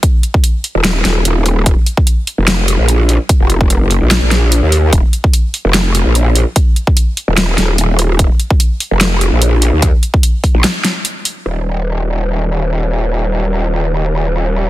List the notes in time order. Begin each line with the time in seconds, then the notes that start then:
0.03 kick, closed hi-hat
0.23 closed hi-hat
0.34 kick
0.44 closed hi-hat
0.64 open hi-hat
0.75 D#1
0.84 snare, closed hi-hat
1.05 D#1, snare, closed hi-hat
1.25 D#1, closed hi-hat
1.46 open hi-hat
1.66 D#1, kick, closed hi-hat
1.86 closed hi-hat
1.97 kick
2.07 closed hi-hat
2.27 open hi-hat
2.38 F1
2.48 snare, closed hi-hat
2.68 closed hi-hat
2.79 A#1
2.88 closed hi-hat
3.09 open hi-hat
3.29 kick, closed hi-hat
3.40 F1
3.50 closed hi-hat
3.61 kick
3.70 closed hi-hat
3.81 F#1
3.91 open hi-hat
4.02 A#1
4.11 snare, closed hi-hat
4.22 A#1
4.31 snare, closed hi-hat
4.52 closed hi-hat
4.63 D#2
4.72 open hi-hat
4.93 D#1, kick, closed hi-hat
5.13 closed hi-hat
5.24 kick
5.33 closed hi-hat
5.54 open hi-hat
5.65 F1
5.74 snare, closed hi-hat
5.95 closed hi-hat
6.06 A#1
6.15 closed hi-hat
6.35 open hi-hat
6.56 kick, closed hi-hat
6.76 closed hi-hat
6.87 kick
6.97 closed hi-hat
7.17 open hi-hat
7.28 D#1
7.37 snare, closed hi-hat
7.58 D#1, snare, closed hi-hat
7.78 D#1, closed hi-hat
7.99 open hi-hat
8.19 D#1, kick, closed hi-hat
8.40 closed hi-hat
8.50 kick
8.60 closed hi-hat
8.80 open hi-hat
8.91 F1
9.01 snare, closed hi-hat
9.21 closed hi-hat
9.32 A#1
9.42 closed hi-hat
9.62 open hi-hat
9.73 D#2
9.82 kick, closed hi-hat
10.03 closed hi-hat
10.14 kick
10.23 closed hi-hat
10.44 kick, open hi-hat
10.55 A#1
10.64 snare, closed hi-hat
10.84 snare, closed hi-hat
11.05 closed hi-hat
11.25 open hi-hat
11.46 D#1